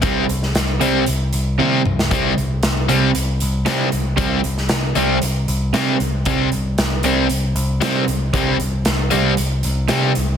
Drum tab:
HH |x-x-x-x-x-x-----|x-x-x-x-x-x-x-x-|x-x-x-x-x-x-x-x-|x-x-x-x-x-x-x-x-|
SD |---oo----------o|----o-------o---|---oo-------o---|----o-------o---|
T1 |------------o---|----------------|----------------|----------------|
T2 |--------------o-|----------------|----------------|----------------|
BD |o---------------|o---------------|o---------------|o---------------|

HH |x-x-x-x-x-x-x-x-|
SD |----o-------o---|
T1 |----------------|
T2 |----------------|
BD |o---------------|